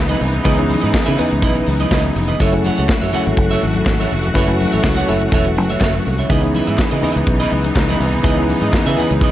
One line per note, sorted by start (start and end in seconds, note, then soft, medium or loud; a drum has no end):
0.00 0.16 C#2 loud
0.00 0.44 E3 medium
0.00 2.36 E3 medium
0.00 0.45 B3 medium
0.00 2.36 B3 medium
0.00 0.45 C#4 medium
0.00 0.46 D#4 medium
0.00 2.36 D#4 medium
0.00 0.46 G#4 medium
0.08 0.19 E4 medium
0.08 0.20 B4 medium
0.08 0.20 D#5 medium
0.08 closed hi-hat soft
0.08 high conga medium
0.20 0.40 C2 loud
0.20 muted clean electric guitar stroke soft
0.20 open hi-hat medium
0.20 muted conga soft
0.33 muted clean electric guitar stroke soft
0.33 closed hi-hat soft
0.33 low conga medium
0.44 0.74 C#2 loud
0.44 0.55 E3 medium
0.44 0.55 B3 medium
0.44 0.56 C#4 medium
0.44 0.56 D#4 medium
0.44 0.64 E4 medium
0.44 0.56 G#4 loud
0.44 0.57 B4 medium
0.44 0.56 D#5 loud
0.44 kick loud
0.44 closed hi-hat medium
0.44 muted conga soft
0.44 low conga medium
0.57 1.07 E3 medium
0.57 1.07 B3 medium
0.57 1.07 C#4 medium
0.57 1.08 D#4 medium
0.57 1.08 G#4 medium
0.57 muted clean electric guitar stroke soft
0.57 closed hi-hat soft
0.70 muted clean electric guitar stroke soft
0.70 open hi-hat medium
0.70 muted conga soft
0.70 high conga medium
0.81 0.92 G#2 medium
0.81 0.92 E4 medium
0.81 0.92 B4 medium
0.81 0.92 D#5 medium
0.81 closed hi-hat soft
0.93 muted clean electric guitar stroke soft
0.93 kick loud
0.93 snare loud
0.93 clap medium
0.93 muted conga soft
1.06 1.17 C#3 medium
1.06 1.17 E4 medium
1.06 1.17 B4 medium
1.06 1.19 E5 medium
1.06 closed hi-hat medium
1.18 1.97 E3 medium
1.18 1.97 B3 medium
1.18 1.97 C#4 medium
1.18 1.97 D#4 medium
1.18 1.36 E4 medium
1.18 1.31 B4 medium
1.18 1.97 B4 loud
1.18 1.30 D#5 medium
1.18 open hi-hat medium
1.18 muted conga soft
1.18 low conga medium
1.31 1.43 C#2 loud
1.31 muted clean electric guitar stroke soft
1.31 closed hi-hat soft
1.42 1.62 B1 loud
1.42 1.62 E4 medium
1.42 1.55 B4 medium
1.42 1.55 D#5 medium
1.42 kick loud
1.42 closed hi-hat medium
1.55 muted clean electric guitar stroke soft
1.55 closed hi-hat medium
1.66 1.86 C#2 medium
1.66 muted clean electric guitar stroke soft
1.66 open hi-hat medium
1.66 muted conga soft
1.66 high conga medium
1.80 1.90 E4 medium
1.80 1.91 B4 medium
1.80 1.92 D#5 medium
1.80 closed hi-hat soft
1.80 high conga medium
1.91 2.10 C#2 medium
1.91 2.11 E4 medium
1.91 2.04 B4 medium
1.91 2.04 D#5 medium
1.91 kick loud
1.91 snare loud
1.91 clap loud
2.03 muted clean electric guitar stroke soft
2.03 closed hi-hat soft
2.03 high conga medium
2.15 2.35 F1 loud
2.15 muted clean electric guitar stroke soft
2.15 open hi-hat medium
2.28 2.40 E4 medium
2.28 2.41 B4 medium
2.28 2.41 D#5 medium
2.28 closed hi-hat soft
2.28 low conga medium
2.40 2.69 F#1 loud
2.40 6.26 E3 medium
2.40 2.50 F#3 medium
2.40 2.50 A3 medium
2.40 6.26 A3 medium
2.40 2.51 C#4 medium
2.40 2.51 E4 medium
2.40 6.26 F#4 medium
2.40 2.60 A4 medium
2.40 2.51 A4 loud
2.40 2.54 C#5 medium
2.40 2.53 E5 loud
2.40 kick loud
2.40 closed hi-hat medium
2.40 low conga medium
2.52 3.02 F#3 medium
2.52 3.02 A3 medium
2.52 3.02 C#4 medium
2.52 3.02 E4 medium
2.52 2.59 G#4 medium
2.52 muted clean electric guitar stroke soft
2.52 closed hi-hat soft
2.60 3.05 A4 medium
2.65 2.78 A4 medium
2.65 2.77 C#5 medium
2.65 2.77 F#5 medium
2.65 open hi-hat medium
2.65 high conga medium
2.77 2.87 C#2 medium
2.77 2.88 A4 medium
2.77 2.89 C#5 medium
2.77 2.90 F#5 medium
2.77 closed hi-hat soft
2.89 muted clean electric guitar stroke soft
2.89 kick loud
2.89 snare loud
2.89 clap loud
3.01 3.11 F#2 medium
3.01 3.12 A4 soft
3.01 3.13 C#5 medium
3.01 3.14 E5 medium
3.01 closed hi-hat medium
3.12 3.92 F#3 medium
3.12 3.92 A3 medium
3.12 3.92 C#4 medium
3.12 3.92 E4 medium
3.12 3.33 A4 medium
3.12 3.92 A4 loud
3.12 3.26 C#5 medium
3.12 3.26 F#5 medium
3.12 open hi-hat medium
3.12 muted conga soft
3.12 low conga medium
3.26 3.36 G#1 loud
3.26 muted clean electric guitar stroke soft
3.26 closed hi-hat soft
3.37 3.56 F#1 loud
3.37 muted clean electric guitar stroke soft
3.37 kick loud
3.37 closed hi-hat medium
3.50 3.62 A4 medium
3.50 3.63 C#5 medium
3.50 3.63 E5 medium
3.50 closed hi-hat medium
3.61 3.82 G#1 medium
3.61 muted clean electric guitar stroke soft
3.61 open hi-hat medium
3.61 muted conga soft
3.61 high conga medium
3.74 muted clean electric guitar stroke soft
3.74 closed hi-hat soft
3.74 high conga medium
3.86 4.05 G#1 loud
3.86 muted clean electric guitar stroke soft
3.86 kick loud
3.86 snare loud
3.86 clap loud
3.98 4.11 A4 medium
3.98 4.11 C#5 medium
3.98 4.12 E5 medium
3.98 closed hi-hat soft
3.98 high conga medium
4.11 4.30 F1 loud
4.11 muted clean electric guitar stroke soft
4.11 open hi-hat medium
4.23 muted clean electric guitar stroke medium
4.23 closed hi-hat soft
4.23 low conga medium
4.33 4.64 F#1 loud
4.33 4.45 F#3 medium
4.33 4.45 A3 medium
4.33 4.45 C#4 medium
4.33 4.45 E4 medium
4.33 4.55 A4 medium
4.33 4.45 B4 loud
4.33 4.50 C#5 medium
4.33 kick loud
4.33 closed hi-hat medium
4.33 muted conga soft
4.33 low conga medium
4.38 4.49 E5 loud
4.47 4.96 F#3 medium
4.47 4.96 A3 medium
4.47 4.97 C#4 medium
4.47 4.97 E4 medium
4.47 4.97 A4 medium
4.47 muted clean electric guitar stroke soft
4.47 closed hi-hat soft
4.60 muted clean electric guitar stroke soft
4.60 open hi-hat medium
4.60 muted conga soft
4.60 high conga medium
4.72 4.82 A1 medium
4.72 4.84 A4 medium
4.72 4.84 C#5 medium
4.72 4.85 E5 medium
4.72 closed hi-hat soft
4.84 5.03 C#2 medium
4.84 kick loud
4.84 snare loud
4.84 clap medium
4.97 5.06 A4 medium
4.97 5.07 C#5 medium
4.97 5.09 F#5 medium
4.97 closed hi-hat medium
5.06 5.28 F#1 medium
5.06 5.86 F#3 medium
5.06 5.86 A3 medium
5.06 5.86 C#4 medium
5.06 5.87 E4 medium
5.06 5.25 A4 medium
5.06 5.87 A4 medium
5.06 5.21 C#5 medium
5.06 5.20 E5 medium
5.06 open hi-hat medium
5.06 muted conga soft
5.06 low conga medium
5.21 muted clean electric guitar stroke soft
5.21 closed hi-hat soft
5.32 5.58 E1 loud
5.32 5.52 A4 medium
5.32 5.46 C#5 medium
5.32 5.46 E5 loud
5.32 kick loud
5.32 closed hi-hat medium
5.32 muted conga soft
5.45 muted clean electric guitar stroke medium
5.45 closed hi-hat medium
5.57 5.76 F#1 medium
5.57 muted clean electric guitar stroke soft
5.57 open hi-hat medium
5.57 high conga medium
5.70 5.80 A4 medium
5.70 5.81 C#5 medium
5.70 5.81 E5 medium
5.70 closed hi-hat soft
5.70 high conga medium
5.81 6.00 F#1 loud
5.81 6.01 A4 medium
5.81 5.95 C#5 medium
5.81 5.94 E5 medium
5.81 kick loud
5.81 snare loud
5.81 clap loud
5.81 muted conga soft
5.93 muted clean electric guitar stroke soft
5.93 closed hi-hat soft
5.93 high conga medium
6.06 6.25 C2 medium
6.06 muted clean electric guitar stroke soft
6.06 open hi-hat medium
6.18 6.29 A4 medium
6.18 6.30 C#5 medium
6.18 6.31 E5 medium
6.18 closed hi-hat soft
6.18 low conga medium
6.29 6.59 C#2 loud
6.29 6.40 E3 medium
6.29 9.31 E3 medium
6.29 6.40 B3 medium
6.29 9.31 B3 medium
6.29 6.40 C#4 medium
6.29 9.31 D#4 medium
6.29 6.40 D#4 medium
6.29 6.49 E4 medium
6.29 6.40 G#4 medium
6.29 6.43 B4 medium
6.29 6.42 D#5 medium
6.29 kick loud
6.29 closed hi-hat medium
6.29 low conga medium
6.41 6.91 E3 medium
6.41 6.91 B3 medium
6.41 6.91 C#4 medium
6.41 6.91 D#4 medium
6.41 6.92 G#4 medium
6.41 muted clean electric guitar stroke medium
6.41 closed hi-hat soft
6.54 6.67 E4 medium
6.54 6.66 B4 medium
6.54 6.66 E5 medium
6.54 open hi-hat medium
6.54 muted conga soft
6.54 high conga medium
6.67 6.76 G#2 medium
6.67 6.77 E4 medium
6.67 6.78 B4 medium
6.67 6.79 E5 medium
6.67 closed hi-hat soft
6.78 muted clean electric guitar stroke soft
6.78 kick loud
6.78 snare loud
6.78 clap loud
6.91 7.01 C#3 medium
6.91 7.02 E4 soft
6.91 7.03 B4 medium
6.91 7.04 D#5 medium
6.91 closed hi-hat medium
7.02 7.81 E3 medium
7.02 7.81 B3 medium
7.02 7.81 C#4 medium
7.02 7.81 D#4 medium
7.02 7.23 E4 medium
7.02 7.82 G#4 loud
7.02 7.16 B4 medium
7.02 7.16 E5 medium
7.02 open hi-hat medium
7.02 muted conga soft
7.02 low conga medium
7.16 7.25 C#2 loud
7.16 muted clean electric guitar stroke soft
7.16 closed hi-hat soft
7.27 7.46 B1 medium
7.27 muted clean electric guitar stroke soft
7.27 kick loud
7.27 closed hi-hat medium
7.27 muted conga soft
7.40 7.50 E4 medium
7.40 7.51 B4 medium
7.40 7.52 D#5 loud
7.40 closed hi-hat medium
7.51 7.71 C#2 medium
7.51 muted clean electric guitar stroke soft
7.51 open hi-hat medium
7.51 muted conga soft
7.51 high conga medium
7.64 muted clean electric guitar stroke soft
7.64 closed hi-hat soft
7.64 high conga medium
7.76 7.95 C#2 loud
7.76 muted clean electric guitar stroke soft
7.76 kick loud
7.76 snare loud
7.76 clap loud
7.87 7.99 E4 medium
7.87 8.00 B4 medium
7.87 8.01 D#5 medium
7.87 closed hi-hat soft
7.87 high conga medium
8.00 8.19 C2 loud
8.00 muted clean electric guitar stroke soft
8.00 open hi-hat medium
8.00 muted conga soft
8.13 muted clean electric guitar stroke soft
8.13 closed hi-hat soft
8.13 low conga medium
8.23 8.54 C#2 loud
8.23 8.34 E3 medium
8.23 8.34 B3 medium
8.23 8.35 C#4 medium
8.23 8.35 D#4 medium
8.23 8.44 E4 loud
8.23 8.35 G#4 loud
8.23 8.37 B4 medium
8.23 8.36 D#5 loud
8.23 kick loud
8.23 closed hi-hat medium
8.23 muted conga soft
8.23 low conga medium
8.37 8.43 D#3 medium
8.37 8.86 B3 medium
8.37 8.87 C#4 medium
8.37 8.87 D#4 medium
8.37 8.87 G#4 loud
8.37 muted clean electric guitar stroke soft
8.37 closed hi-hat soft
8.43 8.89 E3 medium
8.48 muted clean electric guitar stroke soft
8.48 open hi-hat medium
8.48 high conga medium
8.61 8.71 G#2 medium
8.61 8.73 E4 soft
8.61 8.73 B4 medium
8.61 8.73 D#5 medium
8.61 closed hi-hat soft
8.72 muted clean electric guitar stroke medium
8.72 kick loud
8.72 snare loud
8.72 clap medium
8.72 muted conga soft
8.86 8.95 C#3 medium
8.86 8.97 E4 medium
8.86 8.98 B4 medium
8.86 8.99 E5 medium
8.86 closed hi-hat medium
8.97 9.31 E3 medium
8.97 9.31 B3 medium
8.97 9.31 C#4 medium
8.97 9.31 D#4 medium
8.97 9.15 E4 medium
8.97 9.31 G#4 medium
8.97 9.11 B4 medium
8.97 9.09 D#5 medium
8.97 open hi-hat medium
8.97 low conga medium
9.10 9.22 C#2 loud
9.10 muted clean electric guitar stroke soft
9.10 closed hi-hat medium
9.21 9.31 B1 medium
9.21 9.31 E4 medium
9.21 9.31 B4 medium
9.21 9.31 D#5 medium
9.21 kick loud
9.21 closed hi-hat medium
9.21 muted conga soft